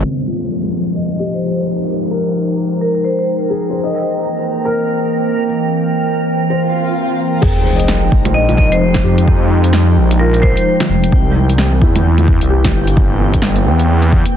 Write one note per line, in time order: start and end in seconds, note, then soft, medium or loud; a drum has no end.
0.00 3.73 F3 medium
0.00 3.73 G#3 medium
0.00 0.23 C4 medium
0.00 0.66 F4 medium
0.00 14.37 C5 medium
0.04 7.44 A#4 medium
0.04 downlifter medium
0.27 1.07 F4 soft
0.44 14.37 G5 medium
0.49 3.73 D#4 medium
0.95 1.17 D#5 medium
1.19 1.99 G4 medium
1.19 1.31 D#5 medium
1.33 1.58 C5 medium
2.11 2.91 A#4 medium
2.81 2.90 A#4 medium
2.95 3.01 A#4 medium
3.04 3.13 C5 medium
3.19 3.24 C5 medium
3.50 3.93 G#4 medium
3.70 7.42 E3 medium
3.70 4.10 C5 medium
3.84 4.22 D#5 soft
3.95 8.83 A#3 medium
3.95 8.52 C4 medium
4.65 5.45 A#4 medium
6.50 7.30 C5 soft
6.50 swell medium
7.41 8.14 F1 loud
7.41 11.12 F3 loud
7.41 8.22 G#4 medium
7.41 14.37 G5 medium
7.41 kick loud
7.41 crash loud
7.41 sub drop medium
7.52 11.11 G#3 loud
7.61 8.33 C5 medium
7.67 11.12 D#4 medium
7.76 8.50 D#5 medium
7.76 closed hi-hat medium
7.88 snare loud
8.12 8.71 A#1 loud
8.12 kick loud
8.25 closed hi-hat medium
8.25 low bongo medium
8.34 8.56 D#5 medium
8.49 closed hi-hat soft
8.49 low bongo medium
8.57 8.69 D#5 medium
8.57 kick loud
8.72 9.03 F1 medium
8.72 8.96 C5 medium
8.72 closed hi-hat medium
8.94 kick medium
8.94 snare loud
8.94 closed hi-hat soft
8.94 low bongo medium
9.04 9.98 F2 medium
9.04 9.84 G4 medium
9.18 closed hi-hat medium
9.28 kick loud
9.64 closed hi-hat medium
9.73 snare loud
9.97 10.55 A#1 loud
10.11 closed hi-hat medium
10.19 10.99 F4 medium
10.19 10.29 A#4 medium
10.34 10.40 A#4 medium
10.34 closed hi-hat soft
10.42 10.52 C5 medium
10.42 kick loud
10.56 10.62 C5 medium
10.56 closed hi-hat medium
10.80 snare loud
10.80 closed hi-hat soft
10.80 low bongo medium
10.89 11.11 F1 medium
11.04 closed hi-hat medium
11.12 11.83 C2 loud
11.12 14.37 E3 medium
11.12 kick loud
11.29 14.37 A#3 medium
11.41 14.37 C4 medium
11.49 closed hi-hat medium
11.58 snare loud
11.81 12.40 E2 loud
11.81 12.61 E4 medium
11.81 kick loud
11.96 closed hi-hat medium
11.96 low bongo medium
12.18 closed hi-hat soft
12.18 low bongo soft
12.28 kick loud
12.41 12.73 C2 medium
12.41 closed hi-hat medium
12.50 13.30 G4 medium
12.65 kick medium
12.65 snare loud
12.65 closed hi-hat soft
12.65 low bongo medium
12.74 13.67 G1 medium
12.87 closed hi-hat medium
12.97 kick loud
13.34 kick medium
13.34 closed hi-hat medium
13.42 snare loud
13.56 closed hi-hat soft
13.66 14.24 E2 medium
13.79 closed hi-hat medium
14.02 closed hi-hat soft
14.12 kick loud
14.26 closed hi-hat medium